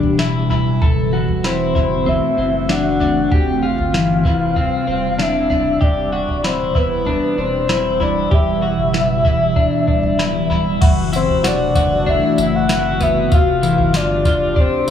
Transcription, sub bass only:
Already playing: D1
0.82 F#1
1.29 E1
1.75 F#1
2.38 F#1
3.32 F1
3.79 G1
4.25 F1
4.88 E1
5.82 E1
6.28 D1
6.75 E1
7.38 E1
8.32 E1
8.78 F#1
9.25 E1
9.88 D1
10.82 F#1
11.29 E1
11.75 F#1
12.38 F#1
13.32 F1
13.79 G1
14.25 F1

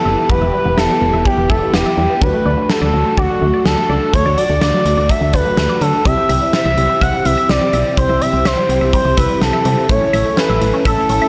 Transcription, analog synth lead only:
Already playing: A4
0.29 B4
0.53 B4
0.78 A4
1.25 G4
1.50 A4
1.73 G4
2.21 B4
2.63 B4
2.70 A4
3.17 F#4
3.65 A4
4.13 C#5
4.37 D5
4.61 D5
5.09 E5
5.33 B4
5.81 A4
6.05 E5
6.53 E5
7.01 F#5
7.25 E5
7.49 D5
7.97 C5
8.21 E5
8.45 C5
8.93 C5
9.17 B4
9.41 A4
9.89 C#5
10.37 B4
10.85 A4
11.09 A4

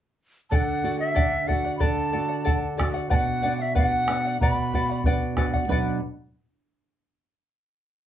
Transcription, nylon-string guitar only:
0.52 D3
0.84 F#4
1.17 D4
1.50 F#4
1.83 D3
2.15 F#4
2.46 D4
2.80 F#4
3.12 B2
3.44 D4
3.77 B3
4.09 D4
4.41 B2
4.74 F#4
5.06 D4
5.37 F#4
5.68 B2 F#3 D4 B4 F#5 B5

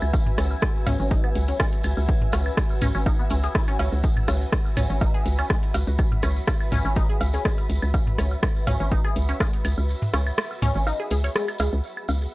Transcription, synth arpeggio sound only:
0.38 C#4
0.87 C#4
1.00 C#4
1.11 D#4
1.24 B3
1.49 C#4
1.60 G#3
2.33 C#4
2.82 C#4
2.95 C#4
3.06 D#4
3.19 B3
3.31 C#4
3.44 G#4
3.55 E4
3.68 C#4
3.79 C#4
4.28 C#4
4.77 C#4
4.90 C#4
5.01 D#4
5.14 G#4
5.39 C#4
5.50 G#3
6.23 C#4
6.72 C#4
6.85 C#4
6.96 D#4
7.09 G#4
7.34 C#4
7.45 G#3
8.18 C#4
8.67 C#4
8.80 C#4
8.92 D#4
9.05 G#4
9.29 C#4
9.40 G#3
10.14 C#4
10.62 C#4
10.75 C#4
10.87 D#4
11.00 G#4
11.11 G#4
11.24 C#5
11.35 G#3
11.60 G#3
12.09 C#4

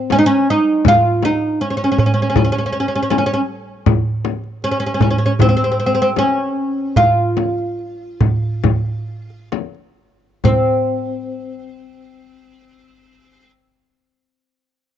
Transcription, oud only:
Already playing: C4
0.12 C#4
0.19 D#4
0.26 C#4
0.50 D#4
0.88 F4
1.25 D#4
1.61 C#4
1.70 C#4
1.77 C#4
1.84 C#4
1.92 C#4
1.99 C#4
2.06 C#4
2.14 C#4
2.22 C#4
2.30 C#4
2.37 C#4
2.45 C#4
2.52 C#4
2.58 C#4
2.66 C#4
2.73 C#4
2.80 C#4
2.88 C#4
2.96 C#4
3.03 C#4
3.10 C#4
3.18 C#4
3.26 C#4
3.34 C#4
4.64 C#4
4.71 C#4
4.80 C#4
4.86 C#4
4.94 C#4
5.02 C#4
5.11 C#4
5.18 C#4
5.26 C#4
5.41 C4
5.49 C4
5.57 C4
5.64 C4
5.72 C4
5.80 C4
5.86 C4
5.95 C4
6.02 C4
6.18 C#4
6.97 F4
10.45 C4

